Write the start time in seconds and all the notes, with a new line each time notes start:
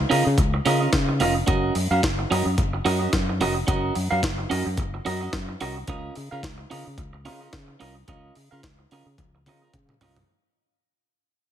0.09 C#3 C#4 F4 A#4 D#5, open hi-hat
0.25 C#3, muted clean electric guitar stroke
0.38 C#2, muted clean electric guitar stroke, kick, closed hi-hat
0.54 muted clean electric guitar stroke
0.65 C#3 C#4 F4 A#4 D#5, open hi-hat
0.81 C#4 F4 A#4 D#5
0.93 C#3, kick, snare, closed hi-hat
1.09 muted clean electric guitar stroke
1.20 F1 C#4 F4 A#4 D#5, open hi-hat
1.35 muted clean electric guitar stroke
1.47 F#1 C#4 F#4 A#4 D#5, kick, closed hi-hat
1.75 F#2, muted clean electric guitar stroke, open hi-hat
1.91 F#2 C#4 F#4 A#4 F5
2.03 F#1, kick, snare, closed hi-hat
2.19 muted clean electric guitar stroke
2.31 F#2 C#4 F#4 A#4 D#5, open hi-hat
2.46 F#2, muted clean electric guitar stroke
2.58 F#1, muted clean electric guitar stroke, kick, closed hi-hat
2.73 muted clean electric guitar stroke
2.85 F#2 C#4 F#4 A#4 D#5, open hi-hat
3.00 C#4 F#4 A#4 D#5
3.13 F#2, kick, snare, closed hi-hat
3.29 muted clean electric guitar stroke
3.41 F1 C#4 F#4 A#4 D#5, open hi-hat
3.55 muted clean electric guitar stroke
3.67 F#1 C#4 F#4 A#4 D#5, kick, closed hi-hat
3.95 F#2, muted clean electric guitar stroke, open hi-hat
4.11 F#2 C#4 F#4 A#4 F5
4.23 F#1, muted clean electric guitar stroke, kick, snare, closed hi-hat
4.38 muted clean electric guitar stroke
4.50 F#2 C#4 F#4 A#4 D#5, open hi-hat
4.66 F#2, muted clean electric guitar stroke
4.77 F#1, muted clean electric guitar stroke, kick, closed hi-hat
4.94 muted clean electric guitar stroke
5.05 F#2 C#4 F#4 A#4 D#5, open hi-hat
5.21 C#4 F#4 A#4 D#5
5.33 F#2, kick, snare, closed hi-hat
5.49 muted clean electric guitar stroke
5.61 C2 C#4 F#4 A#4 D#5, open hi-hat
5.77 muted clean electric guitar stroke
5.87 C#2 C#4 F4 A#4 D#5, kick, closed hi-hat
6.15 C#3, muted clean electric guitar stroke, open hi-hat
6.31 C#3 C#4 F4 A#4 F5
6.43 C#2, muted clean electric guitar stroke, kick, snare, closed hi-hat
6.58 muted clean electric guitar stroke
6.70 C#3 C#4 F4 A#4 D#5, open hi-hat
6.86 C#3, muted clean electric guitar stroke
6.98 C#2, muted clean electric guitar stroke, kick, closed hi-hat
7.13 muted clean electric guitar stroke
7.25 C#3 C#4 F4 A#4 D#5, open hi-hat
7.41 C#4 F4 A#4 D#5
7.53 C#3, kick, snare, closed hi-hat
7.68 muted clean electric guitar stroke
7.80 C2 C#4 F4 A#4 D#5, open hi-hat
7.95 muted clean electric guitar stroke
8.08 C#2 C#4 F4 A#4 D#5, kick, closed hi-hat
8.35 C#3, muted clean electric guitar stroke, open hi-hat
8.51 C#3 C#4 F4 A#4 F5
8.63 C#2, muted clean electric guitar stroke, kick, snare, closed hi-hat
8.79 muted clean electric guitar stroke
8.91 C#3 C#4 F4 A#4 D#5, open hi-hat
9.06 C#3, muted clean electric guitar stroke
9.18 C#2, muted clean electric guitar stroke, kick, closed hi-hat, high tom
9.35 muted clean electric guitar stroke
9.46 C#3 C#4 F4 A#4 D#5, open hi-hat, mid tom
9.62 C#4 F4 A#4 D#5
9.73 C#3, kick, closed hi-hat, mid tom
9.89 muted clean electric guitar stroke, mid tom
10.01 C2 C#4 F4 A#4 D#5, floor tom, open hi-hat
10.16 muted clean electric guitar stroke, floor tom